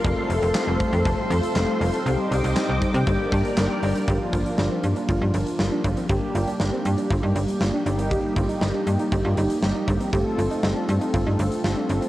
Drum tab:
HH |x-xxx-xxx-xxx-ox|x-xxx-xxx-xxx-ox|x-xx--xxx-xx--xx|x-xx--xxx-xx--xx|
CP |----x-------x---|----x-------x---|----------------|----------------|
SD |----o-------o---|----o-------o---|----o-------o---|----o-------o---|
BD |o-----o-o-------|------o-o-o-----|o-o-----o-----o-|o-------o-------|

HH |x-xx--xxx-xx--xx|x-xx--xxx-xx--xx|
CP |----------------|----------------|
SD |----o-------o---|----o-------o---|
BD |o-o-----o-----o-|o-------o-------|